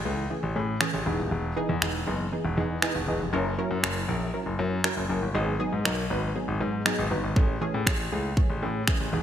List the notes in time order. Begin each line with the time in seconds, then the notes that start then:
0.05 C#2 E3 A3 C#4 G#4
0.30 E3 A3 C#4 G#4
0.43 A1
0.55 A2 E3 A3 C#4 G#4
0.81 E3 A3 C#4 G#4, finger snap
0.94 A1
1.06 E1 E3 B3 D#4 G#4
1.19 D#1
1.31 E1
1.56 E3 B3 D#4 G#4
1.69 E2
1.82 E1 E3 B3 D#4 G#4, finger snap
2.07 F#1 E3 B3 D#4 G#4
2.32 E3 B3 D#4 G#4
2.45 E1
2.57 E2 E3 B3 D#4 G#4
2.82 E3 B3 D#4 G#4, finger snap
2.95 E1
3.08 E1 E3 B3 D#4 G#4
3.20 F1
3.33 F#1 F#3 C#4 E4 A#4
3.58 F#3 C#4 E4 A#4
3.71 F#2
3.83 F#1 F#3 C#4 E4 A#4, finger snap
4.08 A#1 F#3 C#4 E4 A#4
4.33 F#3 C#4 E4 A#4
4.46 F#1
4.59 F#2 F#3 C#4 E4 A#4
4.84 F#3 C#4 E4 A#4, finger snap
4.97 F#1
5.09 F#1 F#3 C#4 E4 A#4
5.22 G1
5.34 G#1 F#3 B3 D#4 G#4
5.59 F#3 B3 D#4 G#4
5.73 G#2
5.85 B1 F#3 B3 D#4 A#4, finger snap
6.10 G#1 F#3 B3 D#4 B4
6.35 F#3 B3 D#4 G#4
6.48 G#1
6.60 G#2 F#3 B3 D#4 G#4
6.85 F#3 B3 D#4 G#4, finger snap
6.99 G#1
7.11 G1 F#3 B3 D#4 B4
7.24 G#1
7.36 A1 E3 A3 C#4 G#4, kick
7.61 E3 A3 C#4 G#4
7.74 A2
7.87 A1 E3 A3 C#4 G#4, finger snap, kick
8.12 C#2 E3 A3 C#4 G#4
8.37 E3 A3 C#4 G#4, kick
8.50 A1
8.62 A2 E3 A3 C#4 G#4
8.87 E3 A3 C#4 G#4, finger snap, kick
9.00 A1
9.13 E1 E3 B3 D#4 G#4